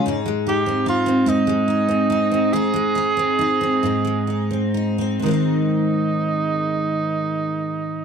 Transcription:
<<
  \new Staff \with { instrumentName = "Tenor saxophone" } { \time 6/8 \key aes \major \tempo 4. = 45 r8 g'8 f'8 ees'4. | aes'2~ aes'8 r8 | ees'2. | }
  \new Staff \with { instrumentName = "Steel-string acoustic guitar" } { \time 6/8 \key aes \major <aes, ees'>16 aes16 ees'16 c'16 ees'16 c'16 <aes, ees'>16 aes16 ees'16 c'16 ees'16 c'16 | <aes, ees'>16 aes16 ees'16 c'16 ees'16 c'16 <aes, ees'>16 aes16 ees'16 c'16 ees'16 c'16 | <aes, ees aes c' ees'>2. | }
>>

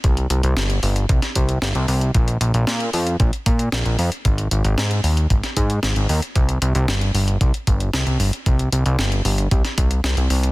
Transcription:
<<
  \new Staff \with { instrumentName = "Analog synth bass" } { \clef bass \time 4/4 \key c \minor \tempo 4 = 114 c,8 c,16 c,16 g,,8 g,,8 c,16 r16 c,8 g,,16 c,16 c,8 | bes,,8 bes,,16 bes,,16 bes,8 f,8 bes,,16 r16 bes,8 bes,,16 bes,,16 f,16 r16 | aes,,8 aes,,16 aes,,16 aes,8 ees,8 aes,,16 r16 aes,8 aes,,16 aes,,16 ees,16 r16 | c,8 c,16 c,16 g,,8 g,,8 c,16 r16 g,,8 c,16 c,16 g,,16 r16 |
c,8 c,16 c,16 g,,8 g,,8 c,16 r16 c,8 c,16 c,16 c,8 | }
  \new DrumStaff \with { instrumentName = "Drums" } \drummode { \time 4/4 <hh bd>16 hh16 hh16 hh16 <hh sn>16 hh16 hho16 hh16 <hh bd>16 <hh sn>16 <hh bd>16 hh16 <hh sn>16 hh16 hho16 hh16 | <hh bd>16 hh16 hh16 hh16 <hh sn>16 hh16 hho16 hh16 <hh bd>16 hh16 <hh bd>16 hh16 <hh sn>16 hh16 hho16 hh16 | <hh bd>16 hh16 hh16 hh16 <hh sn>16 hh16 hho16 hh16 <hh bd>16 <hh sn>16 <hh bd>16 hh16 <hh sn>16 hh16 hho16 hh16 | <hh bd>16 hh16 hh16 hh16 <hh sn>16 hh16 hho16 hh16 <hh bd>16 hh16 <hh bd>16 hh16 <hh sn>16 hh16 hho16 hh16 |
<hh bd>16 hh16 hh16 hh16 <hh sn>16 hh16 hho16 hh16 <hh bd>16 <hh sn>16 <hh bd>16 hh16 <hh sn>16 hh16 hho16 hh16 | }
>>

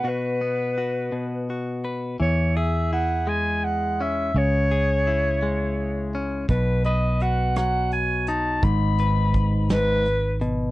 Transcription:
<<
  \new Staff \with { instrumentName = "Clarinet" } { \time 6/8 \key e \major \tempo 4. = 56 b'2 r4 | cis''8 e''8 fis''8 gis''8 fis''8 e''8 | cis''2~ cis''8 r8 | b'8 dis''8 fis''8 fis''8 gis''8 a''8 |
b''4. b'4 r8 | }
  \new Staff \with { instrumentName = "Clean electric guitar" } { \time 6/8 \key e \major << { <b fis'>8 b8 fis'4 fis'8 b'8 | r8 gis'8 e'4. cis'8 | r8 gis'8 e'4. cis'8 | r8 b'8 fis'4. dis'8 |
r8 b'2~ b'8 | } \\ { b,4. b,4. | e4. gis4. | cis4. gis4. | b,4. fis4. |
gis,4. gis,8 r8 b,8 | } >> }
  \new Staff \with { instrumentName = "Fretless electric bass" } { \clef bass \time 6/8 \key e \major r2. | e,2. | cis,2. | b,,2. |
gis,,2. | }
  \new DrumStaff \with { instrumentName = "Drums" } \drummode { \time 6/8 r4. r4. | r4. r4. | r4. r4. | <hh bd>8 hh8 hh8 <hh ss>8 hh8 hh8 |
<hh bd>8 hh8 <hh bd>8 <hh sn>8 hh8 hh8 | }
>>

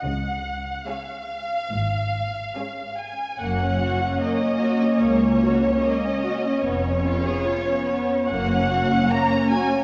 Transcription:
<<
  \new Staff \with { instrumentName = "Violin section" } { \time 4/4 \key fis \major \tempo 4 = 73 fis''4 eis''2~ eis''8 gis''8 | fis''4 dis''4 cis''4 dis''4 | cis''2 fis''4 ais''8 gis''8 | }
  \new Staff \with { instrumentName = "Violin section" } { \time 4/4 \key fis \major << { r4 cis''4 r4 cis''4 | cis''1~ | cis''2 cis''2 | } \\ { r4 gis'8. r4 r16 gis'8. r16 | ais16 cis'16 fis'16 cis'16 ais16 cis'16 fis'16 cis'16 ais16 cis'16 fis'16 cis'16 ais16 cis'16 fis'16 cis'16 | b16 cis'16 eis'16 gis'16 eis'16 cis'16 b16 cis'16 ais16 cis'16 fis'16 cis'16 ais16 cis'16 fis'16 cis'16 | } >> }
  \new Staff \with { instrumentName = "Viola section" } { \time 4/4 \key fis \major << { r4 cis'4 r4 cis'4 | cis'1~ | cis'2 cis'2 | } \\ { r4 gis4 r4 gis4 | ais1 | b2 ais2 | } >> }
  \new Staff \with { instrumentName = "Cello section" } { \clef bass \time 4/4 \key fis \major cis4 r4 gis,4 r4 | fis,4 r4 cis,4 r4 | eis,4 r4 fis,4 r4 | }
  \new Staff \with { instrumentName = "Double bass section" } { \clef bass \time 4/4 \key fis \major cis,4 r4 gis,,4 r4 | fis,,4 r4 cis,4 r4 | eis,,4 r4 fis,,4 r4 | }
>>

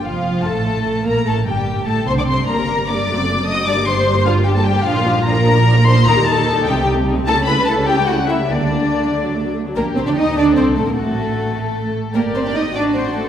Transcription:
<<
  \new Staff \with { instrumentName = "Violin section" } { \time 6/8 \key g \dorian \tempo 4. = 100 f''4 a''4. bes''8 | a''8 g''4 a''8 c'''16 d'''16 c'''8 | bes''4 d'''4. ees'''8 | d'''8 c'''4 f''8 g''16 a''16 g''8 |
\key g \minor f''4 bes''4. c'''8 | bes''8 a''4 g''8 r4 | a''8 b''8 a''8 g''8 fis''8 e''8 | d''2~ d''8 r8 |
g'4. a'4. | fis'4. a'4. | g'4. fis'4. | }
  \new Staff \with { instrumentName = "Violin section" } { \time 6/8 \key g \dorian f'4 a'4. bes'8 | a'8 g'4 a'8 c''16 d''16 c''8 | bes'4 d''4. ees''8 | d''8 c''4 f'8 g'16 a'16 g'8 |
\key g \minor f'4 bes'4. c''8 | bes'8 a'4 g'8 r4 | a'8 b'8 a'8 g'8 fis'8 e'8 | d'2~ d'8 r8 |
bes'8 c''16 d''16 ees''8 d''8 c''8 a'16 bes'16 | a'2~ a'8 r8 | bes'8 c''16 d''16 ees''8 d''8 c''8 a'16 r16 | }
  \new Staff \with { instrumentName = "Viola section" } { \time 6/8 \key g \dorian f4 a4. bes8 | a8 g4 a8 c'16 d'16 c'8 | <bes d'>16 <g bes>16 <bes d'>16 <g bes>16 <bes d'>16 <g bes>16 <a d'>16 <c' fis'>16 <a d'>16 <c' fis'>16 <a d'>16 <c' fis'>16 | <g d'>16 <bes g'>16 <g d'>16 <bes g'>16 <g d'>16 <bes g'>16 <g d'>16 <bes g'>16 <g d'>16 <bes g'>16 <g d'>16 <bes g'>16 |
\key g \minor <f d'>16 <bes f'>16 <f d'>16 <bes f'>16 <f d'>16 <bes f'>16 <f d'>16 <bes f'>16 <f d'>16 <bes f'>16 <f d'>16 <bes f'>16 | <bes ees'>16 <g g'>16 <bes ees'>16 <g g'>16 <bes ees'>16 <g g'>16 <g ees'>16 <a c'>16 <g ees'>16 <a c'>16 <g ees'>16 <a c'>16 | <a e'>16 <g cis'>16 <a e'>16 <g cis'>16 <a e'>16 <g cis'>16 <a e'>16 <g cis'>16 <a e'>16 <g cis'>16 <a e'>16 <g cis'>16 | bes16 <g d'>16 bes16 <g d'>16 bes16 <g d'>16 a16 <fis d'>16 a16 <fis d'>16 a16 <fis d'>16 |
bes8 c'16 d'16 ees'8 d'8 c'8 a16 bes16 | a2~ a8 r8 | <bes' d''>4. <fis' d''>4. | }
  \new Staff \with { instrumentName = "Cello section" } { \clef bass \time 6/8 \key g \dorian f,4 a,4. bes,8 | a,8 g,4 a,8 c16 d16 c8 | g,4. fis,4. | g,2. |
\key g \minor bes,2. | ees4. c4. | cis2. | d2~ d8 r8 |
bes8 c'16 d'16 ees'8 d'8 c'8 a16 bes16 | a2~ a8 r8 | bes8 c'16 d'16 ees'8 d'8 c'8 a16 c'16 | }
  \new Staff \with { instrumentName = "Double bass section" } { \clef bass \time 6/8 \key g \dorian f,,4 a,,4. bes,,8 | a,,8 g,,4 a,,8 c,16 r16 c,8 | g,,4. fis,,4. | g,,2. |
\key g \minor bes,,2. | ees,4. c,4. | cis,2. | d,2~ d,8 r8 |
bes,,8 c,16 d,16 ees,8 d,8 c,8 a,,16 bes,,16 | a,,2~ a,,8 r8 | g,,4. a,,4. | }
>>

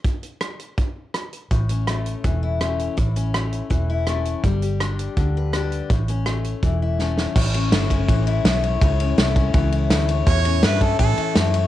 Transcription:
<<
  \new Staff \with { instrumentName = "Harmonica" } { \time 4/4 \key a \mixolydian \tempo 4 = 164 r1 | r1 | r1 | r1 |
r1 | r1 | r1 | cis''4 b'8 a'8 a'4 r4 | }
  \new Staff \with { instrumentName = "Steel-string acoustic guitar" } { \time 4/4 \key a \mixolydian << { r1 | r8 cis'2 e'8 cis'4 | r8 cis'2 e'8 cis'4 | r8 g'2 b'8 g'4 |
r8 cis'2 e'8 cis'4 | cis''8 cis'8 e'8 cis'4 e'4 cis''8 | cis''8 cis'8 e'8 cis'4 e'4 cis''8 | cis''8 cis'8 e'8 cis'4 e'4 cis''8 | } \\ { r1 | a,4 a4 e4 a4 | a,4 a4 e4 a4 | g4 d'4 d4 d'4 |
a,4 a4 e4 a4 | a,4 a4 e4 a4 | a,4 a4 e4 a4 | a,4 a4 e4 a4 | } >> }
  \new Staff \with { instrumentName = "Fingered electric bass" } { \clef bass \time 4/4 \key a \mixolydian r1 | a,,2 e,,2 | a,,2 e,,2 | g,,2 d,2 |
a,,2 e,,2 | a,,4 g,,4 a,,4 b,,4 | cis,4 c,4 cis,4 d,4 | e,4 g,4 a,8 r8 fis,4 | }
  \new DrumStaff \with { instrumentName = "Drums" } \drummode { \time 4/4 <hh bd>8 hh8 <hh ss>8 hh8 <hh bd>4 <hh ss>8 hh8 | <hh bd>8 hh8 <hh ss>8 hh8 <hh bd>4 <hh ss>8 hh8 | <hh bd>8 hh8 <hh ss>8 hh8 <hh bd>4 <hh ss>8 hh8 | <hh bd>8 hh8 <hh ss>8 hh8 <hh bd>4 <hh ss>8 hh8 |
<hh bd>8 hh8 <hh ss>8 hh8 <hh bd>4 sn8 sn8 | <cymc bd>8 cymr8 <cymr sn>8 <bd cymr>8 <bd cymr>8 cymr8 <cymr sn>8 cymr8 | <bd cymr>8 cymr8 <cymr sn>8 <bd cymr>8 <bd cymr>8 cymr8 <cymr sn>8 cymr8 | <bd cymr>8 cymr8 <cymr sn>8 <bd cymr>8 <bd cymr>8 cymr8 <cymr sn>8 cymr8 | }
>>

